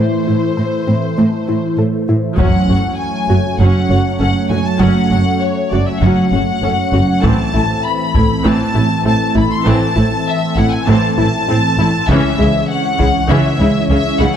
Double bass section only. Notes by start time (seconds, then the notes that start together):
2.38 F#1
2.68 F#1
3.29 F#1
3.59 F#1
3.90 F#1
4.20 F#1
4.51 F#1
4.80 F#1
5.11 F#1
5.72 F#1
6.02 F#1
6.32 F#1
6.63 F#1
6.93 F#1
7.24 A1
7.54 A1
8.16 A1
8.45 A1
8.75 A1
9.05 A1
9.35 A1
9.66 A1
9.96 A1
10.57 A1
10.87 A1
11.18 A1
11.48 A1
11.78 A1
12.08 C#2
12.39 C#2
12.99 C#2
13.29 C#2
13.59 C#2
13.89 C#2
14.20 C#2